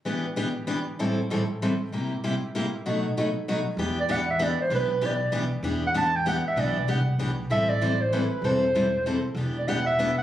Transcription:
0.05 0.25 E3 medium
0.05 0.25 B3 medium
0.05 0.26 D4 medium
0.05 0.26 G4 medium
0.36 0.47 E3 medium
0.36 0.47 B3 medium
0.36 0.47 D4 medium
0.36 0.47 G4 medium
0.67 0.78 E3 medium
0.67 0.78 B3 medium
0.67 0.78 D4 medium
0.67 0.78 G4 medium
0.99 1.19 A2 medium
0.99 1.19 E3 medium
0.99 1.19 G3 medium
0.99 1.19 C4 medium
0.99 1.19 E4 medium
0.99 1.19 A4 medium
1.30 1.41 A2 medium
1.30 1.41 E3 medium
1.30 1.41 G3 medium
1.30 1.41 C4 medium
1.30 1.41 E4 medium
1.30 1.41 A4 medium
1.62 1.72 A2 medium
1.62 1.72 E3 medium
1.62 1.72 G3 medium
1.62 1.72 C4 medium
1.62 1.73 E4 medium
1.62 1.72 A4 medium
1.92 2.12 C3 medium
1.92 2.12 G3 medium
1.92 2.12 A#3 medium
1.92 2.12 E4 medium
1.92 2.12 G4 medium
2.24 2.34 C3 medium
2.24 2.34 G3 medium
2.24 2.34 A#3 medium
2.24 2.34 E4 medium
2.24 2.34 G4 medium
2.55 2.65 C3 medium
2.55 2.65 G3 medium
2.55 2.65 A#3 medium
2.55 2.65 E4 medium
2.55 2.66 G4 medium
2.86 3.05 B2 medium
2.86 3.05 F#3 medium
2.86 3.05 A3 medium
2.86 3.05 D#4 medium
2.86 3.05 F#4 medium
3.17 3.27 B2 medium
3.17 3.27 F#3 medium
3.17 3.27 A3 medium
3.17 3.28 D#4 medium
3.17 3.28 F#4 medium
3.48 3.58 B2 medium
3.48 3.58 F#3 medium
3.48 3.58 A3 medium
3.48 3.59 D#4 medium
3.48 3.59 F#4 medium
3.77 4.52 E2 medium
3.77 3.98 E3 medium
3.77 3.98 B3 medium
3.77 3.98 D4 medium
3.77 3.98 G4 medium
4.00 4.13 D5 medium
4.09 4.19 E3 medium
4.09 4.20 B3 medium
4.09 4.20 D4 medium
4.09 4.20 G4 medium
4.09 4.29 F#5 medium
4.30 4.45 E5 medium
4.39 4.50 E3 medium
4.39 4.50 B3 medium
4.39 4.51 D4 medium
4.39 4.51 G4 medium
4.39 4.60 D5 medium
4.61 4.71 C5 medium
4.70 5.45 B1 medium
4.70 4.90 E3 medium
4.70 4.91 B3 medium
4.70 4.91 D4 medium
4.70 4.91 G4 medium
4.74 5.07 B4 medium
5.01 5.12 E3 medium
5.01 5.12 B3 medium
5.01 5.13 D4 medium
5.01 5.13 G4 medium
5.06 5.35 D5 medium
5.32 5.43 E3 medium
5.32 5.43 B3 medium
5.32 5.44 D4 medium
5.32 5.43 G4 loud
5.63 6.38 E2 medium
5.63 5.84 E3 medium
5.63 5.84 B3 medium
5.63 5.84 D4 medium
5.63 5.84 G4 medium
5.87 5.91 F#5 medium
5.94 6.05 E3 medium
5.94 6.05 B3 medium
5.94 6.06 D4 medium
5.94 6.06 G4 medium
5.94 6.17 A5 medium
6.15 6.27 G5 medium
6.26 6.37 E3 medium
6.26 6.37 B3 medium
6.26 6.37 D4 medium
6.26 6.37 G4 medium
6.26 6.45 F#5 medium
6.48 6.61 E5 medium
6.56 6.81 B1 medium
6.56 6.77 E3 medium
6.56 6.77 B3 medium
6.56 6.77 D4 medium
6.56 6.77 G4 medium
6.56 6.89 D5 medium
6.87 7.14 C2 medium
6.87 6.99 E3 medium
6.87 6.99 B3 medium
6.87 6.99 D4 medium
6.87 6.99 G4 medium
6.87 7.18 F#5 medium
7.19 7.45 B1 medium
7.19 7.30 E3 medium
7.19 7.30 B3 medium
7.19 7.30 D4 medium
7.19 7.30 G4 medium
7.50 8.24 A1 medium
7.50 7.70 E3 medium
7.50 7.70 G3 medium
7.50 7.70 C4 medium
7.50 7.70 E4 medium
7.50 7.70 A4 medium
7.50 7.71 E5 loud
7.69 8.03 D5 medium
7.81 7.92 E3 medium
7.81 7.92 G3 medium
7.81 7.92 C4 medium
7.81 7.92 E4 medium
7.81 7.92 A4 medium
8.01 8.15 C5 medium
8.13 8.23 E3 medium
8.13 8.23 G3 medium
8.13 8.23 C4 medium
8.13 8.23 E4 medium
8.13 8.23 A4 medium
8.13 8.47 B4 medium
8.42 9.17 E1 medium
8.42 8.63 E3 medium
8.42 8.63 G3 medium
8.42 8.64 C4 medium
8.42 8.64 E4 medium
8.42 8.64 A4 medium
8.42 9.25 C5 medium
8.75 8.85 E3 medium
8.75 8.86 G3 medium
8.75 8.85 C4 medium
8.75 8.86 E4 medium
8.75 8.86 A4 medium
9.06 9.16 E3 medium
9.06 9.16 G3 medium
9.06 9.17 C4 medium
9.06 9.17 E4 medium
9.06 9.17 A4 medium
9.35 10.10 E1 medium
9.35 9.56 E3 medium
9.35 9.56 B3 medium
9.35 9.56 D4 medium
9.35 9.57 G4 medium
9.58 9.69 D5 medium
9.68 9.78 E3 medium
9.68 9.79 B3 medium
9.68 9.79 D4 medium
9.68 9.79 G4 loud
9.68 9.86 F#5 medium
9.86 10.15 E5 medium
9.99 10.09 E3 medium
9.99 10.10 B3 medium
9.99 10.10 D4 medium
9.99 10.10 G4 medium
10.18 10.23 F#5 medium

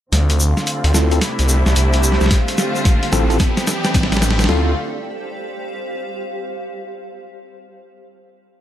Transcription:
0.12 0.54 D2 medium
0.12 1.21 D3 medium
0.12 3.36 A3 medium
0.12 1.20 C4 medium
0.12 1.20 F4 medium
0.12 3.86 G4 medium
0.12 snare soft
0.12 closed hi-hat medium
0.12 riser medium
0.12 shaker soft
0.30 closed hi-hat medium
0.30 shaker soft
0.40 3.40 C5 medium
0.40 shaker medium
0.57 snare soft
0.57 shaker soft
0.62 2.30 E5 medium
0.67 closed hi-hat medium
0.67 shaker medium
0.84 0.93 D2 medium
0.84 closed hi-hat medium
0.94 1.20 D2 medium
0.94 1.08 C4 medium
0.94 1.08 E4 medium
0.94 1.08 F4 medium
0.94 1.08 A4 medium
0.94 snare medium
0.94 shaker loud
1.11 1.18 C4 medium
1.11 1.18 E4 medium
1.11 1.18 F4 medium
1.11 1.18 A4 medium
1.11 closed hi-hat soft
1.11 shaker soft
1.21 2.30 C3 medium
1.21 2.30 D4 medium
1.21 2.29 E4 medium
1.21 snare medium
1.21 closed hi-hat medium
1.21 shaker soft
1.39 1.64 C2 medium
1.39 closed hi-hat medium
1.39 shaker soft
1.49 shaker medium
1.66 1.75 C2 medium
1.66 snare medium
1.66 shaker soft
1.76 2.18 C2 loud
1.76 closed hi-hat medium
1.76 shaker medium
1.93 closed hi-hat medium
1.93 shaker soft
2.03 shaker medium
2.12 snare soft
2.21 2.29 C2 loud
2.21 snare soft
2.21 shaker soft
2.26 snare medium
2.31 3.39 D3 medium
2.31 3.39 C4 medium
2.31 3.39 F4 medium
2.31 kick medium
2.31 snare medium
2.31 closed hi-hat medium
2.31 shaker soft
2.48 closed hi-hat medium
2.48 shaker soft
2.58 snare medium
2.58 shaker medium
2.76 shaker soft
2.85 kick loud
2.85 snare medium
2.85 closed hi-hat medium
2.85 shaker soft
3.03 closed hi-hat medium
3.13 3.38 A1 loud
3.13 3.24 C4 loud
3.13 3.24 E4 medium
3.13 3.24 F4 medium
3.13 3.24 A4 loud
3.13 snare medium
3.13 shaker medium
3.30 3.37 C4 loud
3.30 3.37 E4 medium
3.30 3.37 F4 medium
3.30 3.37 A4 loud
3.30 closed hi-hat soft
3.30 shaker soft
3.39 4.48 E3 medium
3.39 4.48 B3 medium
3.39 4.48 D4 medium
3.39 4.48 G4 medium
3.39 kick loud
3.39 snare medium
3.39 closed hi-hat medium
3.39 shaker soft
3.57 snare medium
3.57 closed hi-hat medium
3.57 shaker soft
3.67 snare loud
3.67 shaker loud
3.84 snare medium
3.84 shaker soft
3.94 4.48 A1 loud
3.94 kick loud
3.94 snare loud
3.94 closed hi-hat medium
3.94 shaker medium
4.03 snare medium
4.12 snare medium
4.12 closed hi-hat medium
4.12 shaker soft
4.17 snare medium
4.22 snare loud
4.22 shaker medium
4.31 snare medium
4.39 snare loud
4.39 shaker soft
4.44 snare loud
4.49 4.74 D2 medium
4.49 4.74 D3 medium
4.49 4.74 A3 medium
4.49 4.74 C4 medium
4.49 4.71 C4 medium
4.49 4.71 E4 medium
4.49 4.74 F4 medium
4.49 4.71 F4 medium
4.49 6.63 G4 medium
4.49 4.71 A4 loud
4.49 snare loud
4.59 6.63 C5 medium
4.68 6.63 F5 medium

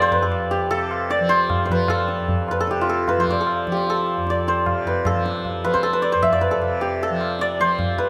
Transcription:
0.00 0.19 F2 medium
0.00 0.70 C3 medium
0.00 1.20 F3 medium
0.00 0.50 G4 medium
0.00 0.22 A4 medium
0.00 0.18 C5 medium
0.00 1.10 D5 loud
0.11 1.35 B4 medium
0.11 tabla ge medium
0.20 2.20 F2 medium
0.20 0.70 A4 medium
0.32 tabla na medium
0.51 2.70 G4 medium
0.51 tabla te medium
0.70 2.68 C3 medium
0.70 1.89 A4 loud
0.70 tabla tin medium
0.91 tabla na medium
1.10 3.30 D5 loud
1.10 tabla te medium
1.20 1.70 F3 medium
1.29 1.65 C5 loud
1.29 tabla te medium
1.50 tabla na medium
1.50 tabla ge medium
1.65 1.77 C5 medium
1.70 3.17 F3 medium
1.70 2.51 B4 medium
1.70 tabla ge medium
1.88 2.60 A4 loud
1.88 tabla na loud
1.88 tabla ge medium
2.08 tabla te medium
2.20 4.17 F2 medium
2.28 tabla tin medium
2.28 tabla ge medium
2.48 3.08 B4 medium
2.48 tabla na medium
2.60 2.89 A4 medium
2.67 4.65 C3 medium
2.67 3.72 G4 medium
2.67 tabla te medium
2.81 6.18 F4 medium
2.87 3.40 A4 medium
2.87 tabla te medium
3.08 3.26 B4 medium
3.08 tabla na medium
3.08 tabla ge medium
3.17 3.67 F3 medium
3.17 4.48 C5 medium
3.28 4.30 D5 medium
3.28 tabla ge medium
3.41 3.89 A4 medium
3.47 tabla na medium
3.67 5.15 F3 medium
3.67 tabla ke medium
3.72 6.81 G4 medium
3.77 tabla te medium
3.87 5.06 A4 medium
3.87 tabla tin medium
4.06 tabla na medium
4.17 6.14 F2 medium
4.27 6.02 D5 medium
4.27 tabla te medium
4.47 4.93 C5 medium
4.47 tabla te medium
4.66 6.62 C3 medium
4.66 tabla na medium
4.66 tabla ge medium
4.86 5.64 B4 medium
4.86 tabla ge medium
5.05 5.83 A4 medium
5.05 tabla na loud
5.05 tabla ge medium
5.15 5.64 F3 medium
5.26 tabla te medium
5.45 tabla tin medium
5.45 tabla ge medium
5.64 7.10 F3 medium
5.64 5.80 B4 medium
5.64 tabla na medium
5.74 5.99 C5 medium
5.74 tabla ke medium
5.83 6.51 A4 medium
5.83 tabla te medium
5.93 6.18 B4 medium
6.02 6.32 D5 medium
6.02 tabla te medium
6.12 8.08 F2 medium
6.12 6.47 C5 medium
6.22 8.09 E5 loud
6.22 tabla na medium
6.22 tabla ge medium
6.32 7.41 D5 medium
6.41 7.67 B4 medium
6.41 tabla ge medium
6.51 7.02 A4 medium
6.62 8.09 C3 medium
6.62 tabla na medium
6.81 8.09 G4 medium
6.81 tabla te medium
7.01 8.09 A4 medium
7.01 tabla tin medium
7.10 7.60 F3 medium
7.21 tabla na medium
7.39 8.09 D5 loud
7.39 tabla te medium
7.60 8.09 F3 medium
7.60 8.04 C5 medium
7.60 tabla te medium
7.79 tabla na medium
7.79 tabla ge medium
7.98 8.09 B4 medium
7.98 tabla ge medium

